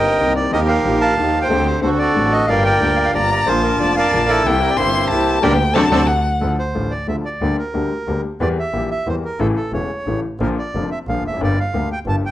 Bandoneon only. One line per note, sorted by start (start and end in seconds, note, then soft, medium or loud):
0.00 0.33 A#4 medium
0.00 0.33 D#5 medium
0.00 0.33 G5 medium
0.36 0.52 D5 medium
0.53 0.99 G4 medium
0.53 0.68 A#4 medium
0.53 0.60 D#5 loud
0.68 1.15 A#4 medium
0.68 1.01 F5 medium
1.01 1.48 F5 medium
1.01 1.39 A5 loud
1.42 1.65 C5 medium
1.42 1.68 G5 medium
1.66 1.80 C5 medium
1.82 1.99 F#4 medium
1.82 1.99 A4 medium
1.82 1.90 C5 medium
1.99 2.46 F#4 medium
1.99 2.46 A4 medium
1.99 2.33 D5 medium
2.32 2.49 D#5 medium
2.47 2.64 A#4 medium
2.47 2.64 D5 medium
2.47 2.64 F5 medium
2.63 3.11 A#4 medium
2.63 3.11 D5 medium
2.63 2.95 G5 medium
2.96 2.98 F5 medium
3.02 3.14 F5 medium
3.02 3.06 G5 medium
3.15 3.30 D5 medium
3.31 3.48 D5 medium
3.47 3.93 F4 medium
3.47 3.62 C5 medium
3.63 3.79 A#4 medium
3.80 3.95 D5 medium
3.96 4.43 A#4 medium
3.96 4.42 D5 medium
3.96 4.30 F5 medium
4.29 4.75 E4 medium
4.29 4.59 A4 medium
4.61 4.70 A#4 medium
4.69 4.77 D5 medium
4.77 5.39 E4 medium
4.77 5.39 G4 medium
4.77 5.39 C5 medium
5.42 5.53 G4 loud
5.42 5.53 A#4 medium
5.42 5.53 D5 medium
5.74 5.85 A4 medium
5.74 5.85 C5 medium
5.74 5.86 D5 medium
5.91 6.02 A4 medium
5.91 6.02 C5 medium
5.91 6.03 D5 loud
6.41 6.57 A4 medium
6.59 6.93 C5 medium
6.91 7.07 D5 medium
7.08 7.16 E5 medium
7.25 7.56 D5 medium
7.59 8.21 A#4 medium
8.41 8.49 D5 medium
8.59 8.89 E5 medium
8.91 9.08 E5 medium
9.08 9.15 C5 medium
9.25 9.40 A#4 medium
9.40 9.47 A4 medium
9.56 9.72 A4 medium
9.73 10.20 C#5 medium
10.42 10.49 A#4 medium
10.58 10.89 D5 medium
10.91 10.99 E5 medium
11.09 11.24 F5 medium
11.27 11.41 E5 medium
11.44 11.59 D5 medium
11.60 11.89 F5 medium
11.92 11.99 G5 medium
12.09 12.16 A5 medium
12.26 12.31 G5 medium